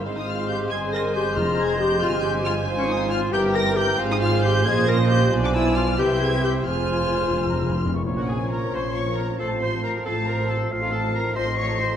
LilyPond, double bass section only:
\new Staff \with { instrumentName = "Double bass section" } { \clef bass \time 6/8 \key f \minor \tempo 4. = 91 aes,,4. g,,4. | f,,4. g,,4. | aes,,4. g,,4. | aes,,4. bes,,4. |
b,,4. c,4. | f,,2~ f,,8 r8 | \key bes \minor bes,,4. bes,,4. | a,,4. a,,4. |
a,,4. a,,4. | }